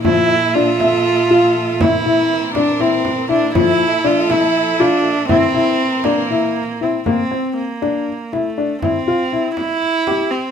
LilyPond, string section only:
\new Staff \with { instrumentName = "String section" } { \time 7/8 \key c \mixolydian \tempo 4 = 120 << { <f a' e''>2.~ <f a' e''>8 | <e c' bes'>2.~ <e c' bes'>8 | <f a' e''>2.~ <f a' e''>8 | <e c' bes'>2.~ <e c' bes'>8 |
r2. r8 | r2. r8 | } \\ { bes,2.~ bes,8~ | bes,2.~ bes,8~ | bes,2.~ bes,8~ | bes,2.~ bes,8 |
r2. r8 | r2. r8 | } >> }